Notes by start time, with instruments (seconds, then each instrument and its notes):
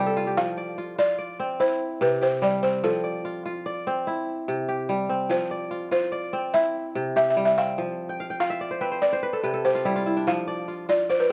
Already playing: kora C3 G3 F4 G4 B4
0.06 kora A4
0.17 kora F4
0.27 kora G4
0.37 kora F3, balafon F5
0.57 kora D5
0.78 kora F4
0.98 kora F4, balafon D5
1.18 kora D5
1.40 kora C4
1.60 kora E4, balafon C5
2.01 kora C3, balafon B4
2.21 kora G4, balafon C5
2.42 kora G3, balafon D5
2.63 kora C4, balafon C5
2.84 kora F3, balafon A4
3.04 kora D5
3.25 kora F4
3.46 kora F4
3.66 kora D5
3.87 kora C4
4.07 kora E4
4.48 kora C3
4.69 kora G4
4.89 kora G3
5.09 kora C4
5.29 kora F3, balafon C5
5.51 kora D5
5.71 kora F4
5.91 kora F4, balafon C5
6.12 kora D5
6.33 kora C4
6.54 kora E4, balafon E5
6.95 kora C3
7.16 kora G4, balafon E5
7.30 balafon E5
7.37 kora G3
7.45 balafon E5
7.58 kora C4, balafon F5
7.78 kora F3
8.09 kora G5
8.20 kora F5
8.30 kora G5
8.40 kora F4 F5, balafon F5
8.50 kora E5
8.61 kora D5
8.71 kora C5
8.81 kora C4 B4
8.92 kora C5
9.02 balafon D5, kora D5
9.13 kora C5
9.23 kora B4
9.33 kora A4
9.43 kora C3 B4
9.54 kora A4
9.65 kora G4, balafon C5
9.75 kora F4
9.85 kora G3 E4
9.96 kora F4
10.06 kora E4
10.17 kora D4
10.27 kora F3, balafon F5
10.48 kora D5
10.68 kora F4
10.89 kora F4, balafon D5
11.09 balafon C5, kora D5
11.20 balafon B4